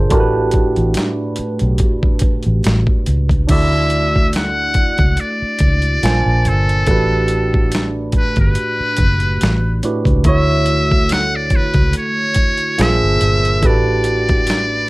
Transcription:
Already playing: G1 A#2 A#3 D4 G#4 C5
0.09 A1 A2 A3 D4 F#4 G4, kick, closed hi-hat
0.13 A#4
0.20 B4
0.51 kick, closed hi-hat
0.76 A1, closed hi-hat
0.94 snare, closed hi-hat
1.36 muted fingered electric bass stroke, closed hi-hat
1.59 B1, closed hi-hat
1.78 kick, closed hi-hat
2.03 kick
2.19 muted fingered electric bass stroke, kick, closed hi-hat
2.43 A1, closed hi-hat
2.64 A1, snare, closed hi-hat
2.87 kick
3.06 C#2, closed hi-hat
3.29 kick, closed hi-hat
3.47 D2 A3 D4 E4 F#4, kick, closed hi-hat, crash
3.51 D5 E5
3.90 closed hi-hat
4.16 kick
4.33 F#5, snare, closed hi-hat
4.74 muted fingered electric bass stroke, kick, closed hi-hat
4.98 C#2, kick, closed hi-hat
5.17 D5, closed hi-hat
5.42 muted fingered electric bass stroke
5.59 C#2, kick, closed hi-hat
5.82 closed hi-hat
6.03 A#1 A#2 A#3 D4 C5 G#5, snare, closed hi-hat
6.26 A#1
6.45 G1 A4, closed hi-hat
6.69 closed hi-hat
6.86 A1 A2 A3 D4 F#4 G4, kick, closed hi-hat
6.91 B4
7.28 closed hi-hat
7.54 kick
7.72 snare, closed hi-hat
8.12 muted fingered electric bass stroke, kick, closed hi-hat
8.17 B4
8.36 G1, kick, closed hi-hat
8.40 B4
8.55 closed hi-hat
8.80 muted fingered electric bass stroke
8.97 F#1, kick, closed hi-hat
9.20 closed hi-hat
9.41 A1, snare, closed hi-hat
9.83 A2 A3 D4 F#4 G4 B4, closed hi-hat
10.05 C#2, kick, closed hi-hat
10.24 D2 D3 A3 E4 F#4 E5, kick, closed hi-hat
10.28 C#5
10.66 closed hi-hat
10.92 kick
11.09 F#5, snare, closed hi-hat
11.36 D5
11.50 muted fingered electric bass stroke, kick, closed hi-hat
11.55 B4
11.74 C#2, kick, closed hi-hat
11.93 closed hi-hat
11.98 C#5
12.34 kick, closed hi-hat
12.57 closed hi-hat
12.78 A#1 A#2 A#3 D4 G#4 C5 E5, snare, closed hi-hat
13.02 G1
13.21 G1, closed hi-hat
13.45 closed hi-hat
13.61 A1 A2 A3 C#4 F#4 G4, kick, closed hi-hat
13.65 B4 D5
13.69 D4
14.04 closed hi-hat
14.29 kick, closed hi-hat
14.47 snare, closed hi-hat

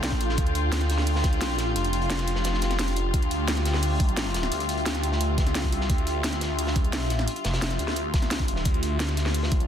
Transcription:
Already playing: D4 F4 A4 G5
0.00 C2, snare, closed hi-hat
0.12 kick, closed hi-hat
0.20 A#1, closed hi-hat
0.29 snare
0.37 D2, kick, closed hi-hat
0.47 closed hi-hat
0.55 closed hi-hat
0.72 snare, closed hi-hat
0.81 snare, closed hi-hat
0.90 snare, closed hi-hat
0.98 snare
1.07 G4, closed hi-hat, open hi-hat
1.16 snare
1.24 kick, snare, closed hi-hat
1.33 closed hi-hat
1.37 C2
1.41 snare, closed hi-hat
1.58 A#1, snare, closed hi-hat
1.76 F1, closed hi-hat
1.84 closed hi-hat
1.93 closed hi-hat
2.02 closed hi-hat
2.10 snare, closed hi-hat
2.19 snare, closed hi-hat
2.27 closed hi-hat
2.35 snare
2.44 snare, closed hi-hat
2.54 snare
2.62 snare, closed hi-hat
2.70 snare, closed hi-hat
2.79 snare, closed hi-hat
2.88 closed hi-hat
2.96 closed hi-hat
3.14 D2 E5, kick, closed hi-hat
3.22 closed hi-hat
3.31 closed hi-hat
3.48 snare, closed hi-hat
3.57 snare, closed hi-hat
3.66 snare, closed hi-hat
3.73 snare
3.83 closed hi-hat, open hi-hat
4.00 kick, closed hi-hat
4.09 closed hi-hat
4.17 snare, closed hi-hat
4.34 snare, closed hi-hat
4.43 snare
4.52 D2, closed hi-hat
4.60 closed hi-hat
4.69 closed hi-hat
4.77 closed hi-hat
4.86 snare, closed hi-hat
4.95 snare, closed hi-hat
5.03 closed hi-hat
5.12 snare
5.21 closed hi-hat
5.38 kick, snare, closed hi-hat
5.47 C#2, snare, closed hi-hat
5.55 snare, closed hi-hat
5.64 kick, closed hi-hat
5.72 C2, closed hi-hat
5.81 snare
5.90 D2, kick, closed hi-hat
5.98 closed hi-hat
6.07 closed hi-hat
6.24 snare, closed hi-hat
6.33 snare, closed hi-hat
6.41 snare, closed hi-hat
6.58 closed hi-hat, open hi-hat
6.67 snare
6.76 kick, closed hi-hat
6.84 closed hi-hat
6.89 C2
6.93 snare, closed hi-hat
7.09 A#1, snare, closed hi-hat
7.19 snare
7.28 closed hi-hat
7.36 closed hi-hat
7.44 F1, snare, closed hi-hat
7.54 snare, closed hi-hat
7.62 snare, closed hi-hat
7.71 snare, closed hi-hat
7.79 D2, closed hi-hat
7.88 snare
7.96 closed hi-hat
8.14 kick, snare, closed hi-hat
8.22 snare, closed hi-hat
8.31 snare, closed hi-hat
8.39 kick, closed hi-hat
8.48 closed hi-hat
8.56 snare
8.65 D2 D5, kick, closed hi-hat
8.74 closed hi-hat
8.83 closed hi-hat
9.00 snare, closed hi-hat
9.09 snare, closed hi-hat
9.17 snare, closed hi-hat
9.26 snare
9.34 closed hi-hat, open hi-hat
9.43 snare
9.52 kick, closed hi-hat
9.60 closed hi-hat
9.64 C2

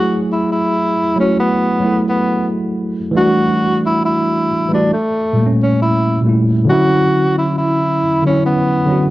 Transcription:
Already playing: F#3 A3 E4 F#4 G#4
0.32 E4
0.52 E4
1.16 F#3 A3 C#4
1.21 E4 F#4
1.40 B3
1.80 F#3 A3
1.85 E4 A4
2.09 B3
3.11 E3 G3 A3
3.17 D4 F#4
3.86 E4
4.05 E4
4.68 E3 G3 A3
4.74 D4 F#4
4.93 A3
5.33 A#2 G3
5.38 A3 A#3
5.46 C#4
5.62 C#4
5.82 E4
6.22 A#2 G3
6.26 A3 E4
6.65 D3 F#3
6.69 C#4 E4 F#4
7.38 E4
7.58 E4
8.22 D3 F#3 C#4
8.27 C#4 E4
8.46 B3
8.85 D3 F#3
8.90 C#4 F#4

